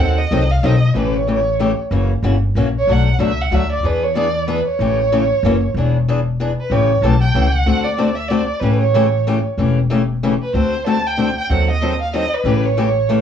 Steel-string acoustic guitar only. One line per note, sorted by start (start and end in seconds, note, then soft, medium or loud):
0.00 0.18 D#3 medium
0.00 0.19 F#3 medium
0.00 0.19 C4 medium
0.00 0.19 D#4 medium
0.00 0.19 A4 medium
0.31 0.42 D#3 medium
0.31 0.42 F#3 medium
0.31 0.42 C4 medium
0.31 0.42 D#4 medium
0.31 0.42 A4 medium
0.63 0.74 D#3 medium
0.63 0.74 F#3 medium
0.63 0.74 C4 medium
0.63 0.74 D#4 medium
0.63 0.75 A4 medium
0.95 1.15 C#3 medium
0.95 1.15 E3 medium
0.95 1.15 A3 medium
0.95 1.15 C#4 medium
0.95 1.16 G4 medium
1.28 1.38 C#3 medium
1.28 1.39 E3 medium
1.28 1.38 A3 medium
1.28 1.39 C#4 medium
1.28 1.39 G4 medium
1.59 1.70 C#3 medium
1.59 1.70 E3 medium
1.59 1.70 A3 medium
1.59 1.70 C#4 medium
1.59 1.71 G4 loud
1.91 2.11 C#3 medium
1.91 2.11 E3 medium
1.91 2.11 A#3 medium
1.91 2.11 C#4 medium
1.91 2.12 F#4 medium
2.23 2.34 C#3 medium
2.23 2.34 E3 medium
2.23 2.34 A#3 medium
2.23 2.34 C#4 medium
2.23 2.35 F#4 medium
2.56 2.66 C#3 medium
2.56 2.67 E3 medium
2.56 2.67 A#3 medium
2.56 2.67 C#4 medium
2.56 2.67 F#4 medium
2.88 3.08 B2 medium
2.88 3.08 F#3 medium
2.88 3.08 A3 medium
2.88 3.08 D4 medium
2.88 3.08 F#4 medium
3.19 3.30 B2 medium
3.19 3.30 F#3 medium
3.19 3.30 A3 medium
3.19 3.30 D4 medium
3.19 3.31 F#4 medium
3.52 3.62 B2 medium
3.52 3.62 F#3 medium
3.52 3.62 A3 medium
3.52 3.62 D4 medium
3.52 3.63 F#4 medium
3.83 4.03 E3 medium
3.83 4.03 B3 medium
3.83 4.04 D4 medium
3.83 4.04 G#4 medium
4.15 4.26 E3 medium
4.15 4.26 B3 medium
4.15 4.27 D4 medium
4.15 4.27 G#4 medium
4.47 4.58 E3 medium
4.47 4.58 B3 medium
4.47 4.58 D4 medium
4.47 4.59 G#4 medium
4.80 4.99 C#3 medium
4.80 5.00 E3 medium
4.80 5.00 A3 medium
4.80 5.00 C#4 medium
4.80 5.00 G4 medium
5.12 5.22 C#3 medium
5.12 5.22 E3 medium
5.12 5.23 A3 medium
5.12 5.23 C#4 medium
5.12 5.23 G4 medium
5.45 5.55 C#3 medium
5.45 5.55 E3 medium
5.45 5.55 A#3 medium
5.45 5.55 C#4 medium
5.45 5.55 F#4 loud
5.77 5.96 E3 medium
5.77 5.96 B3 medium
5.77 5.96 D4 medium
5.77 5.96 G#4 medium
6.08 6.18 E3 medium
6.08 6.19 B3 medium
6.08 6.19 D4 medium
6.08 6.19 G#4 medium
6.39 6.50 E3 medium
6.39 6.50 B3 medium
6.39 6.51 D4 medium
6.39 6.50 G#4 medium
6.71 6.90 C#3 medium
6.71 6.91 E3 medium
6.71 6.91 A3 medium
6.71 6.91 C#4 medium
6.71 6.91 G4 medium
7.03 7.14 C#3 medium
7.03 7.14 E3 medium
7.03 7.14 A3 medium
7.03 7.15 C#4 medium
7.03 7.14 G4 medium
7.34 7.45 C#3 medium
7.34 7.45 E3 medium
7.34 7.46 A3 medium
7.34 7.46 C#4 medium
7.34 7.46 G4 medium
7.66 7.86 D3 medium
7.66 7.86 A3 medium
7.66 7.86 C4 medium
7.66 7.86 F#4 medium
7.66 7.87 A4 medium
7.98 8.09 D3 medium
7.98 8.09 A3 medium
7.98 8.09 C4 medium
7.98 8.09 F#4 medium
7.98 8.10 A4 medium
8.30 8.41 D3 medium
8.30 8.41 A3 medium
8.30 8.41 C4 medium
8.30 8.41 F#4 medium
8.30 8.42 A4 medium
8.62 8.82 C#3 medium
8.62 8.82 E3 medium
8.62 8.82 A3 medium
8.62 8.82 C#4 medium
8.62 8.82 G4 medium
8.94 9.05 C#3 medium
8.94 9.05 E3 medium
8.94 9.05 A3 medium
8.94 9.05 C#4 loud
8.94 9.06 G4 medium
9.27 9.37 C#3 medium
9.27 9.37 E3 medium
9.27 9.37 A3 medium
9.27 9.38 C#4 medium
9.27 9.38 G4 medium
9.58 9.77 C#3 medium
9.58 9.78 E3 medium
9.58 9.78 A3 medium
9.58 9.78 C#4 medium
9.58 9.78 G4 medium
9.90 10.00 C#3 medium
9.90 10.01 E3 medium
9.90 10.01 A3 medium
9.90 10.01 C#4 medium
9.90 10.01 G4 loud
10.23 10.33 C#3 medium
10.23 10.33 E3 medium
10.23 10.33 A3 medium
10.23 10.33 C#4 medium
10.23 10.33 G4 medium
10.54 10.73 D3 medium
10.54 10.74 A3 medium
10.54 10.74 C4 medium
10.54 10.74 F#4 medium
10.54 10.74 A4 medium
10.86 10.96 D3 medium
10.86 10.96 A3 medium
10.86 10.97 C4 medium
10.86 10.97 F#4 medium
10.86 10.97 A4 medium
11.17 11.28 D3 medium
11.17 11.28 A3 medium
11.17 11.28 C4 medium
11.17 11.29 F#4 medium
11.17 11.29 A4 medium
11.50 11.69 D#3 medium
11.50 11.69 F#3 medium
11.50 11.69 C4 medium
11.50 11.70 D#4 medium
11.50 11.70 A4 medium
11.81 11.92 D#3 medium
11.81 11.92 F#3 medium
11.81 11.92 C4 medium
11.81 11.92 D#4 medium
11.81 11.93 A4 medium
12.13 12.24 D#3 medium
12.13 12.24 F#3 medium
12.13 12.24 C4 medium
12.13 12.24 D#4 medium
12.13 12.24 A4 medium
12.44 12.64 C#3 medium
12.44 12.64 E3 medium
12.44 12.65 A3 medium
12.44 12.65 C#4 medium
12.44 12.65 G4 medium
12.77 12.87 C#3 medium
12.77 12.88 E3 medium
12.77 12.88 A3 medium
12.77 12.88 C#4 medium
12.77 12.88 G4 medium
13.09 13.19 C#3 medium
13.09 13.19 E3 medium
13.09 13.19 A3 medium
13.09 13.20 C#4 medium
13.09 13.20 G4 medium